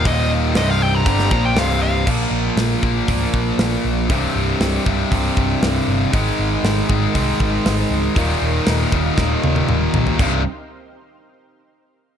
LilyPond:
<<
  \new Staff \with { instrumentName = "Lead electric guitar" } { \time 4/4 \key c \minor \tempo 4 = 118 ees''8 r8 ees''16 f''16 g''16 bes''4 g''16 f''8 f''8 | r1 | r1 | r1 |
r1 | r1 | }
  \new Staff \with { instrumentName = "Analog synth pad" } { \time 4/4 \key c \minor << { <bes bes'>4 <c' c''>2. | r1 | r1 | <aes bes'>1 |
f''1 | r1 | } \\ { ees'4 g'2. | r1 | r1 | ees'1~ |
ees'1 | r1 | } >> }
  \new Staff \with { instrumentName = "Distorted electric guitar" } { \clef bass \time 4/4 \key c \minor <ees, bes, ees>4 <c, g, c>4 <g, d g>8 <bes, f bes>8 <c, g, c>4 | <bes, f bes>4. <bes, f bes>2~ <bes, f bes>8 | <c, g, c>4. <c, g, c>2~ <c, g, c>8 | <aes, ees aes>4. <aes, ees aes>2~ <aes, ees aes>8 |
<ees, bes, ees>4. <ees, bes, ees>2~ <ees, bes, ees>8 | <c, g, c>8 r2. r8 | }
  \new Staff \with { instrumentName = "Distorted electric guitar" } { \clef bass \time 4/4 \key c \minor <ees, bes, ees>4 <c, g, c>4 <g, d g>8 <bes, f bes>8 <c, g, c>4 | <bes, f bes>2 <bes, f bes>2 | <c, g, c>2 <c, g, c>2 | <aes, ees aes>2 <aes, ees aes>2 |
<ees, bes, ees>2 <ees, bes, ees>2 | <c, g, c>8 r2. r8 | }
  \new Staff \with { instrumentName = "Picked electric bass" } { \clef bass \time 4/4 \key c \minor ees,,4 c,,4 g,,8 bes,,8 c,,4 | bes,,8 bes,,8 bes,,8 bes,,8 des,,8 bes,,8 bes,,8 bes,,8 | c,,8 c,,8 c,,8 c,,8 c,,8 c,,8 c,,8 g,,8 | aes,,8 aes,,8 aes,,8 aes,,8 c,8 aes,,8 aes,,8 des,,8 |
ees,,8 ees,,8 ees,,8 ees,,8 ees,,8 ees,,8 ees,,8 bes,,8 | c,,8 r2. r8 | }
  \new DrumStaff \with { instrumentName = "Drums" } \drummode { \time 4/4 <hho bd>4 <hho sn>4 <hho bd>16 sn16 bd8 <hho sn>4 | <cymc bd>4 <hho sn>8 bd8 <hho bd>8 bd8 <hho sn>4 | <hho bd>4 <hho sn>8 bd8 <hho bd>8 bd8 <hho sn>4 | <hho bd>4 <hho sn>8 bd8 <hho bd>8 bd8 <hho sn>4 |
<hho bd>4 <hho sn>8 bd8 <bd sn>8 tommh16 tommh16 toml8 tomfh16 tomfh16 | <cymc bd>4 r4 r4 r4 | }
>>